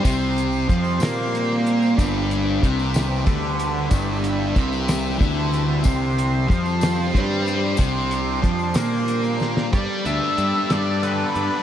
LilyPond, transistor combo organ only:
<<
  \new Staff \with { instrumentName = "Transistor combo organ" } { \time 6/8 \key g \mixolydian \tempo 4. = 62 << { c''2. | b'2.~ | b'2. | c''2.~ |
c''2. | a'2. | } \\ { c'2. | d'2. | e'2. | c'2. |
d'2. | b2. | } >> }
  \new Staff \with { instrumentName = "Transistor combo organ" } { \clef bass \time 6/8 \key g \mixolydian g2.~ | g2.~ | g2. | g2.~ |
g2. | g2. | }
>>